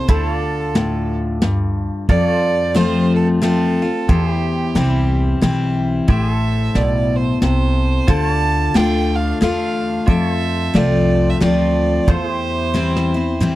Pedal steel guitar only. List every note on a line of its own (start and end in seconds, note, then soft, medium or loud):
0.09 0.29 E4 medium
0.09 2.07 A4 medium
0.09 0.36 C5 medium
0.29 2.07 F4 medium
0.36 2.08 D5 medium
2.09 4.07 F4 medium
2.09 4.07 A4 medium
2.09 2.36 D5 medium
2.36 4.08 C5 medium
4.09 4.29 F4 medium
4.09 4.35 A4 medium
4.09 6.08 C5 medium
4.29 6.07 E4 medium
4.35 6.07 G4 medium
6.08 8.06 E4 medium
6.08 6.34 G4 medium
6.08 8.07 C5 medium
6.34 8.07 A4 medium
8.08 10.06 F4 medium
8.08 10.07 A4 medium
8.08 8.35 C5 medium
8.35 10.07 D5 medium
10.07 12.05 F4 medium
10.07 12.06 A4 medium
10.07 10.34 D5 medium
10.34 12.06 C5 medium
12.08 12.28 F4 medium
12.08 12.33 A4 medium
12.08 13.55 C5 medium
12.28 13.55 E4 medium
12.33 13.55 G4 medium